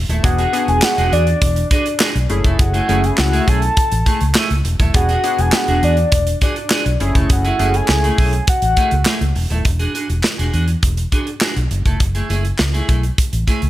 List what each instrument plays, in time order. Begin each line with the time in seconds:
0.09 fingered electric bass D#1, clean electric guitar A3 E4 A4, closed hi-hat
0.23 fingered electric bass E1, analog polysynth B3 D4 F#4 G#4, soft synth lead F#5, kick, closed hi-hat
0.38 clean electric guitar D4 F#4 G#4, closed hi-hat
0.53 analog polysynth B3 D4 F#4 G#4, clean electric guitar D4 F#4 G#4, closed hi-hat
0.68 fingered electric bass E1, soft synth lead G#5, muted clean electric guitar stroke, closed hi-hat
0.82 soft synth lead F#5, snare, clap
0.97 fingered electric bass E1, clean electric guitar D4 F#4 G#4, closed hi-hat
1.12 fingered electric bass E2, clean electric guitar D4 F#4 G#4, soft synth lead D5, closed hi-hat
1.27 muted clean electric guitar stroke, closed hi-hat
1.42 fingered electric bass E1, kick, closed hi-hat
1.56 muted clean electric guitar stroke, closed hi-hat
1.71 clean electric guitar D4 F#4 G#4, soft synth lead D5, kick, closed hi-hat
1.86 muted clean electric guitar stroke, closed hi-hat
2.00 clean electric guitar D4 F#4 G#4, snare, clap
2.15 fingered electric bass B1, muted clean electric guitar stroke, closed hi-hat
2.29 fingered electric bass F#1, analog polysynth A3 C#4 E4 G#4, muted clean electric guitar stroke, closed hi-hat
2.44 fingered electric bass F1, clean electric guitar A3 E4 A4, kick, closed hi-hat
2.59 fingered electric bass F#1, soft synth lead F#5, muted clean electric guitar stroke, kick, closed hi-hat
2.74 clean electric guitar A3 E4 G#4, closed hi-hat
2.88 fingered electric bass F#1, clean electric guitar A3 E4 G#4, analog polysynth A3 C#4 E4 G#4, closed hi-hat
3.03 soft synth lead G#5, muted clean electric guitar stroke, closed hi-hat
3.18 fingered electric bass C#2, soft synth lead F#5, snare, clap
3.32 clean electric guitar A3 E4 G#4, closed hi-hat
3.47 fingered electric bass B1, clean electric guitar A3 E4 G#4, soft synth lead A5, kick, closed hi-hat
3.62 muted clean electric guitar stroke, closed hi-hat
3.77 kick, closed hi-hat
3.91 fingered electric bass A1, muted clean electric guitar stroke, closed hi-hat
4.06 clean electric guitar A3 E4 G#4, kick, closed hi-hat
4.21 fingered electric bass C#2, muted clean electric guitar stroke, closed hi-hat
4.35 clean electric guitar A3 E4 G#4, snare, clap
4.50 fingered electric bass C#2, muted clean electric guitar stroke, closed hi-hat
4.65 fingered electric bass E1, muted clean electric guitar stroke, closed hi-hat
4.79 fingered electric bass D#1, clean electric guitar A3 E4 A4, kick, closed hi-hat
4.94 fingered electric bass E1, analog polysynth B3 D4 F#4 G#4, soft synth lead F#5, muted clean electric guitar stroke, kick, closed hi-hat
5.09 clean electric guitar D4 F#4 G#4, closed hi-hat
5.24 analog polysynth B3 D4 F#4 G#4, clean electric guitar D4 F#4 G#4, closed hi-hat
5.38 fingered electric bass E1, soft synth lead G#5, muted clean electric guitar stroke, closed hi-hat
5.52 soft synth lead F#5, muted clean electric guitar stroke, snare, clap
5.68 fingered electric bass E1, clean electric guitar D4 F#4 G#4, closed hi-hat
5.83 fingered electric bass E2, clean electric guitar D4 F#4 G#4, soft synth lead D5, closed hi-hat
5.97 muted clean electric guitar stroke, closed hi-hat
6.12 fingered electric bass E1, kick, closed hi-hat
6.27 muted clean electric guitar stroke, closed hi-hat
6.41 clean electric guitar D4 F#4 G#4, soft synth lead D5, kick, closed hi-hat
6.56 muted clean electric guitar stroke, closed hi-hat
6.70 clean electric guitar D4 F#4 G#4, snare, clap
6.86 fingered electric bass B1, muted clean electric guitar stroke, closed hi-hat
7.00 fingered electric bass F#1, analog polysynth A3 C#4 E4 G#4, muted clean electric guitar stroke, closed hi-hat
7.15 fingered electric bass F1, clean electric guitar A3 E4 A4, kick, closed hi-hat
7.30 fingered electric bass F#1, soft synth lead F#5, kick, closed hi-hat
7.45 clean electric guitar A3 E4 G#4, closed hi-hat
7.59 fingered electric bass F#1, analog polysynth A3 C#4 E4 G#4, clean electric guitar A3 E4 G#4, closed hi-hat
7.74 soft synth lead G#5, muted clean electric guitar stroke, closed hi-hat
7.88 fingered electric bass C#2, soft synth lead G#5, snare, clap
8.04 clean electric guitar A3 E4 G#4, closed hi-hat
8.18 fingered electric bass B1, clean electric guitar A3 E4 G#4, kick, open hi-hat
8.33 muted clean electric guitar stroke, closed hi-hat
8.47 soft synth lead F#5, kick, closed hi-hat
8.62 fingered electric bass A1, muted clean electric guitar stroke, closed hi-hat
8.77 clean electric guitar A3 E4 G#4, kick, closed hi-hat
8.91 fingered electric bass C#2, muted clean electric guitar stroke, closed hi-hat
9.05 clean electric guitar A3 E4 G#4, snare, clap
9.21 fingered electric bass C#2, muted clean electric guitar stroke, closed hi-hat
9.36 fingered electric bass E1, muted clean electric guitar stroke, open hi-hat
9.50 fingered electric bass D#1, clean electric guitar A3 E4 A4, closed hi-hat
9.65 fingered electric bass E1, muted clean electric guitar stroke, kick, closed hi-hat
9.79 clean electric guitar D4 F#4 G#4, closed hi-hat
9.94 clean electric guitar D4 F#4 G#4, closed hi-hat
10.09 fingered electric bass E1, muted clean electric guitar stroke, closed hi-hat
10.23 muted clean electric guitar stroke, snare, clap
10.38 fingered electric bass E1, clean electric guitar D4 F#4 G#4, closed hi-hat
10.53 fingered electric bass E2, clean electric guitar D4 F#4 G#4, closed hi-hat
10.68 muted clean electric guitar stroke, closed hi-hat
10.83 fingered electric bass E1, kick, closed hi-hat
10.97 muted clean electric guitar stroke, closed hi-hat
11.12 clean electric guitar D4 F#4 G#4, kick, closed hi-hat
11.27 muted clean electric guitar stroke, closed hi-hat
11.41 clean electric guitar D4 F#4 G#4, snare, clap
11.56 fingered electric bass B1, muted clean electric guitar stroke, closed hi-hat
11.71 fingered electric bass F#1, muted clean electric guitar stroke, closed hi-hat
11.86 fingered electric bass F1, clean electric guitar A3 E4 A4, kick, closed hi-hat
12.00 fingered electric bass F#1, muted clean electric guitar stroke, kick, closed hi-hat
12.15 clean electric guitar A3 E4 G#4, closed hi-hat
12.29 fingered electric bass F#1, clean electric guitar A3 E4 G#4, closed hi-hat
12.44 muted clean electric guitar stroke, closed hi-hat
12.59 fingered electric bass C#2, snare, clap
12.74 clean electric guitar A3 E4 G#4, closed hi-hat
12.89 fingered electric bass B1, clean electric guitar A3 E4 G#4, kick, closed hi-hat
13.03 muted clean electric guitar stroke, closed hi-hat
13.18 kick, closed hi-hat
13.33 fingered electric bass A1, muted clean electric guitar stroke, closed hi-hat
13.47 clean electric guitar A3 E4 G#4, kick, closed hi-hat
13.62 fingered electric bass C#2, muted clean electric guitar stroke, closed hi-hat